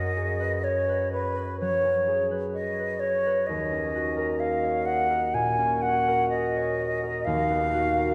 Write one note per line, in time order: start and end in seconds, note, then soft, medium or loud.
0.00 3.52 F#2 soft
0.00 1.83 C#4 soft
0.00 0.16 G#4 soft
0.00 0.63 C#5 soft
0.00 0.65 D#5 medium
0.17 2.06 G#4 soft
0.40 0.88 B4 soft
0.64 1.12 C#5 soft
0.89 1.36 B4 soft
1.12 1.59 B4 soft
1.12 2.54 C#5 soft
1.37 2.30 B4 soft
1.60 5.51 F#3 soft
1.60 2.26 C#5 medium
1.84 3.70 C#4 soft
2.08 3.52 G#4 soft
2.31 2.78 B4 soft
2.54 3.02 C#5 soft
2.54 3.01 D#5 soft
2.79 3.25 B4 soft
3.00 3.48 C#5 medium
3.00 4.62 C#5 soft
3.26 3.52 B4 soft
3.46 7.25 D#2 soft
3.46 4.41 D#5 medium
3.71 5.57 C#4 soft
3.95 5.82 F#4 soft
4.17 5.09 A#4 soft
4.40 4.86 D#5 soft
4.40 4.87 F5 soft
4.64 6.55 C#5 soft
4.86 6.31 D#5 soft
4.86 5.36 F#5 medium
5.10 6.07 A#4 soft
5.34 7.29 A#2 soft
5.34 5.83 G#5 medium
5.58 7.29 C#4 soft
5.82 7.72 F#4 soft
5.82 6.29 F#5 medium
6.08 7.02 A#4 soft
6.29 7.26 D#5 medium
6.29 6.79 D#5 soft
6.56 7.30 C#5 soft
6.80 8.14 D#5 soft
7.03 7.96 A#4 soft
7.25 8.14 D#2 soft
7.25 8.14 F5 medium
7.50 8.14 B3 soft
7.74 8.14 F#4 soft
7.98 8.14 A#4 soft